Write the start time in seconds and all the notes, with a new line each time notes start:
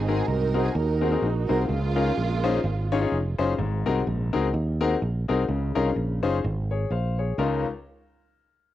Already playing: G#1 G#2 C4 D#4
0.07 C4 D#4 F#4 G#4 A#4
0.27 C2 D#4 F#4 A#4
0.54 C4 D#4 F#4 G#4 A#4
0.63 G#4
0.74 D#2 D#4 F#4 A#4
1.01 C4 D#4 F#4 G#4 A#4
1.11 C4 D#4 F#4 G#4 A#4
1.22 A#1
1.48 C2 C4 D#4 F#4 G#4 A#4 C5
1.68 C#2 C#3 G#3 A#3 F4
1.96 C#4 D#4 F4 G#4 A#4
2.17 A#1
2.44 C#4 D#4 F4 G#4 C5
2.64 G#1
2.92 C#4 D#4 F4 G#4 C#5
3.01 C#4 D#4 F4 G#4 C#5
3.12 F1
3.38 F#1 C#4 D#4 F4 G#4 C5
3.58 G#1 G#2
3.86 C2 C4 D#4 F#4 G#4 A#4
4.07 A#1
4.33 C#2 C4 D#4 F#4 G#4 A#4
4.54 D#2
4.81 C4 D#4 F#4 G#4 A#4
5.02 A#1
5.28 C2 C4 D#4 F#4 G#4 A#4
5.48 C#2 C#3
5.75 C2 C#4 D#4 F4 G#4 A#4
5.96 A#1
6.23 F#1 C#4 D#4 F4 G#4 C5
6.44 G#1
6.71 G#4 C#5
6.90 A#1 C5 F5
7.19 G#4 C#5
7.38 C#2 C#4 D#4 F4 A#4